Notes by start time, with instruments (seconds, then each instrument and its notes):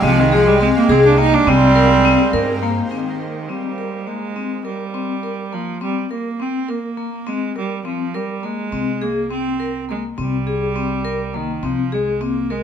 Already playing: ambient pad G#3 G4 F5
0.02 upright bass C2, cello F3, clarinet G#3, vibraphone C4
0.19 cello D#3
0.32 cello F3, vibraphone G#4
0.48 cello G3
0.60 cello G#3, vibraphone C4
0.76 cello A#3
0.89 upright bass C2, cello C4, vibraphone G#4
1.05 cello D4
1.18 vibraphone A#3, cello D#4
1.33 cello D4
1.46 upright bass C2, clarinet G3, ambient pad A#3 D#4 C5, vibraphone C4, cello C4
1.76 vibraphone A#4
2.05 vibraphone C4
2.33 upright bass G2, vibraphone A#4
2.63 vibraphone A#3
2.91 cello D#3, vibraphone C4
3.20 vibraphone A#4
3.49 cello G3, vibraphone C4
3.78 vibraphone A#4
4.07 cello G#3, vibraphone A#3
4.36 vibraphone C4
4.65 cello G3, vibraphone A#4
4.94 vibraphone C4
5.23 vibraphone A#4
5.52 cello F3, vibraphone A#3
5.81 cello G3, vibraphone C4
6.11 cello A#3, vibraphone A#4
6.40 vibraphone C4, cello C4
6.69 cello A#3, vibraphone A#4
6.97 vibraphone A#3
7.27 cello G#3, vibraphone C4
7.56 cello G3, vibraphone A#4
7.85 cello F3, vibraphone C4
8.14 cello G3, vibraphone A#4
8.43 cello G#3, vibraphone A#3
8.72 upright bass C2, vibraphone C4
9.02 cello A#3, vibraphone G#4
9.31 vibraphone C4, cello C4
9.60 vibraphone A#4
9.89 cello G#3, vibraphone A#3
10.18 upright bass C2, cello G3, vibraphone C4
10.47 vibraphone G#4
10.76 vibraphone C4
11.05 vibraphone A#4
11.34 cello D#3, vibraphone A#3
11.63 upright bass C2, cello F3, vibraphone C4
11.92 cello G#3, vibraphone G#4
12.21 cello A#3, vibraphone C4
12.50 cello G#3, vibraphone A#4